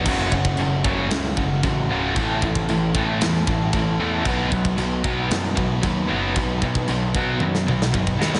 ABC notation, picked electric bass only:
X:1
M:4/4
L:1/8
Q:1/4=114
K:Bmix
V:1 name="Picked electric bass" clef=bass
F,,, F,,, F,,, F,,, C,, F,,, A,,, C,,, | A,,, A,,, A,,, A,,, E,, A,,, A,,, E,, | B,,, B,,, B,,, B,,, F,, B,,, D,, F,,, | B,,, B,,, B,,, B,,, F,, B,,, B,,, D,, |]